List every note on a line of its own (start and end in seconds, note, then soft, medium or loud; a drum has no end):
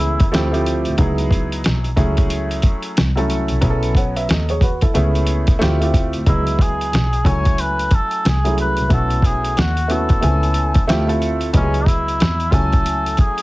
0.00 0.30 C#2 loud
0.00 0.25 E3 medium
0.00 0.25 A3 medium
0.00 0.26 B3 medium
0.00 0.26 C#4 medium
0.00 0.68 E4 medium
0.00 0.29 G#4 medium
0.20 kick medium
0.20 closed hi-hat medium
0.32 0.84 D2 medium
0.32 0.50 F3 medium
0.32 0.51 A3 medium
0.32 0.51 C4 medium
0.32 0.51 E4 medium
0.32 0.51 G4 loud
0.32 snare loud
0.32 closed hi-hat medium
0.51 0.93 F3 medium
0.51 0.93 A3 medium
0.51 0.93 C4 medium
0.51 0.94 E4 medium
0.51 0.94 G4 medium
0.51 closed hi-hat medium
0.66 closed hi-hat medium
0.85 0.96 D2 soft
0.85 closed hi-hat soft
0.98 1.64 C#2 loud
0.98 1.86 F#3 medium
0.98 1.87 B3 medium
0.98 1.87 D#4 medium
0.98 1.87 E4 medium
0.98 1.88 G#4 loud
0.98 kick loud
0.98 closed hi-hat medium
1.18 closed hi-hat soft
1.31 kick medium
1.31 closed hi-hat medium
1.52 closed hi-hat medium
1.64 1.96 B1 medium
1.64 snare loud
1.64 closed hi-hat medium
1.84 closed hi-hat soft
1.96 2.60 C#2 loud
1.96 2.96 F#3 medium
1.96 2.96 A3 medium
1.96 2.96 C#4 medium
1.96 2.97 E4 medium
1.96 2.97 G#4 medium
1.96 kick medium
1.96 closed hi-hat medium
2.17 kick medium
2.17 closed hi-hat medium
2.30 closed hi-hat medium
2.51 closed hi-hat medium
2.62 kick medium
2.62 closed hi-hat medium
2.82 closed hi-hat soft
2.97 3.48 C2 medium
2.97 snare loud
2.97 closed hi-hat medium
3.16 3.57 F#3 medium
3.16 3.57 A3 medium
3.16 3.57 C#4 medium
3.16 3.58 E4 medium
3.16 3.58 A4 medium
3.16 closed hi-hat medium
3.30 closed hi-hat medium
3.48 3.60 C2 soft
3.48 closed hi-hat medium
3.61 4.25 B1 medium
3.61 4.50 F#3 medium
3.61 4.50 B3 medium
3.61 4.51 C#4 medium
3.61 3.96 E4 medium
3.61 3.72 G#4 medium
3.61 kick medium
3.61 closed hi-hat medium
3.70 4.00 A4 medium
3.83 closed hi-hat soft
3.95 4.16 C#5 soft
3.95 4.16 F#5 medium
3.95 kick medium
3.95 closed hi-hat medium
4.16 4.29 B4 medium
4.16 4.28 E5 medium
4.16 closed hi-hat medium
4.29 4.92 D#2 medium
4.29 4.49 A4 soft
4.29 4.49 D#5 medium
4.29 snare loud
4.29 closed hi-hat medium
4.49 4.62 G#4 medium
4.49 4.62 C#5 medium
4.49 closed hi-hat soft
4.61 4.82 F#4 medium
4.61 4.82 B4 medium
4.61 kick medium
4.61 closed hi-hat medium
4.81 4.95 E4 soft
4.81 5.14 A4 medium
4.81 kick medium
4.81 closed hi-hat soft
4.94 5.58 C#2 loud
4.94 5.53 A3 medium
4.94 5.53 B3 medium
4.94 5.54 C#4 medium
4.94 5.54 E4 medium
4.94 5.54 G#4 medium
4.94 closed hi-hat medium
5.15 closed hi-hat medium
5.27 closed hi-hat medium
5.47 kick medium
5.47 closed hi-hat soft
5.59 6.12 D2 medium
5.59 5.77 A3 medium
5.59 5.78 C4 medium
5.59 5.78 E4 medium
5.59 5.78 F4 medium
5.59 5.79 G4 loud
5.59 snare loud
5.59 closed hi-hat medium
5.80 6.21 A3 medium
5.80 6.21 C4 medium
5.80 6.21 E4 medium
5.80 6.22 F4 medium
5.80 6.22 G4 medium
5.80 closed hi-hat medium
5.94 kick medium
5.94 closed hi-hat medium
6.13 6.24 D2 soft
6.13 closed hi-hat soft
6.26 6.90 C#2 medium
6.26 7.14 F#3 medium
6.26 7.15 B3 medium
6.26 6.63 E4 medium
6.26 7.15 E4 medium
6.26 7.16 G#4 medium
6.26 7.15 D#5 medium
6.26 kick loud
6.26 closed hi-hat medium
6.47 closed hi-hat medium
6.59 7.28 G#4 medium
6.59 kick medium
6.59 closed hi-hat medium
6.81 closed hi-hat soft
6.92 7.24 B1 medium
6.92 snare loud
6.92 closed hi-hat medium
7.13 closed hi-hat soft
7.24 7.88 C#2 medium
7.24 8.23 F#3 medium
7.24 8.24 A3 medium
7.24 8.24 C#4 medium
7.24 8.24 E4 medium
7.24 7.62 C#5 medium
7.24 8.25 G#5 medium
7.24 kick medium
7.24 closed hi-hat medium
7.45 kick medium
7.45 closed hi-hat medium
7.58 7.96 B4 loud
7.58 closed hi-hat loud
7.79 closed hi-hat medium
7.91 8.30 A4 loud
7.91 kick medium
7.91 closed hi-hat medium
8.11 closed hi-hat soft
8.25 8.75 C2 medium
8.25 8.60 G#4 medium
8.25 snare loud
8.25 closed hi-hat medium
8.44 8.85 F#3 medium
8.44 8.85 A3 medium
8.44 8.85 C#4 medium
8.44 8.85 E4 medium
8.44 8.86 G#4 medium
8.44 closed hi-hat medium
8.58 8.90 B4 medium
8.58 closed hi-hat medium
8.77 8.87 C2 soft
8.77 closed hi-hat medium
8.89 9.53 B1 medium
8.89 9.78 A3 medium
8.89 9.78 B3 medium
8.89 9.78 C#4 medium
8.89 9.79 E4 medium
8.89 9.79 F#4 medium
8.89 9.27 A4 loud
8.89 kick loud
8.89 closed hi-hat medium
9.10 closed hi-hat medium
9.22 9.60 G#4 medium
9.22 kick medium
9.22 closed hi-hat medium
9.44 closed hi-hat medium
9.57 10.19 D#2 medium
9.57 9.93 F#4 medium
9.57 snare loud
9.57 closed hi-hat medium
9.77 closed hi-hat soft
9.88 10.20 A3 medium
9.88 10.20 B3 medium
9.88 10.23 C#4 medium
9.88 10.21 E4 medium
9.88 10.23 F#4 medium
9.88 11.22 A4 medium
9.88 closed hi-hat medium
10.09 kick medium
10.09 closed hi-hat medium
10.21 10.85 C#2 medium
10.21 10.80 A3 medium
10.21 10.81 B3 medium
10.21 10.31 C4 medium
10.21 10.81 E4 medium
10.21 10.82 G#5 medium
10.21 closed hi-hat medium
10.29 10.84 C#4 medium
10.43 closed hi-hat medium
10.54 closed hi-hat medium
10.74 kick medium
10.74 closed hi-hat medium
10.87 11.51 D2 medium
10.87 11.05 A3 medium
10.87 11.05 C4 medium
10.87 11.06 E4 medium
10.87 11.06 F4 medium
10.87 11.06 G4 loud
10.87 snare loud
10.87 closed hi-hat medium
11.07 11.48 A3 medium
11.07 11.48 C4 medium
11.07 11.48 E4 medium
11.07 11.49 F4 medium
11.07 11.49 A4 medium
11.07 closed hi-hat medium
11.22 closed hi-hat medium
11.41 closed hi-hat soft
11.53 12.17 C#2 medium
11.53 12.41 F#3 medium
11.53 12.42 B3 medium
11.53 11.89 C#4 loud
11.53 12.42 E4 medium
11.53 11.63 G4 medium
11.53 12.42 D#5 medium
11.53 kick loud
11.53 closed hi-hat medium
11.62 12.46 G#4 medium
11.74 closed hi-hat soft
11.86 12.54 E4 medium
11.86 kick medium
11.86 closed hi-hat medium
12.08 closed hi-hat medium
12.20 12.52 E2 medium
12.20 snare loud
12.20 closed hi-hat medium
12.40 closed hi-hat medium
12.51 13.16 C#2 medium
12.51 13.42 F#3 medium
12.51 13.42 A3 medium
12.51 13.42 C#4 medium
12.51 13.42 E4 medium
12.51 13.21 A4 loud
12.51 13.42 G#5 medium
12.51 kick medium
12.51 closed hi-hat medium
12.72 kick medium
12.72 closed hi-hat soft
12.86 closed hi-hat medium
13.06 closed hi-hat medium
13.17 13.42 G#4 medium
13.17 kick medium
13.17 closed hi-hat medium
13.38 closed hi-hat medium